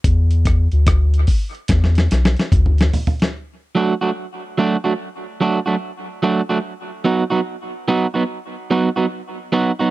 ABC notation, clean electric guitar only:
X:1
M:4/4
L:1/16
Q:"Swing 16ths" 1/4=73
K:Dmix
V:1 name="Clean electric guitar"
z16 | z2 [F,A,DF] [F,A,DF] z2 [F,A,DF] [F,A,DF] z2 [F,A,DF] [F,A,DF] z2 [F,A,DF] [F,A,DF] | z2 [F,B,^DF] [F,B,DF] z2 [F,B,DF] [F,B,DF] z2 [F,B,DF] [F,B,DF] z2 [F,B,DF] [F,B,DF] |]